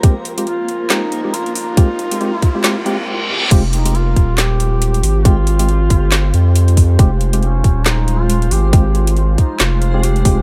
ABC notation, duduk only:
X:1
M:4/4
L:1/16
Q:"Swing 16ths" 1/4=138
K:Fm
V:1 name="Duduk"
z4 F4 E4 F2 F2- | F12 z4 | z2 E2 F4 G8 | F12- F2 z2 |
z4 D4 E3 F3 G2- | G4 z2 E2 F4 G4 |]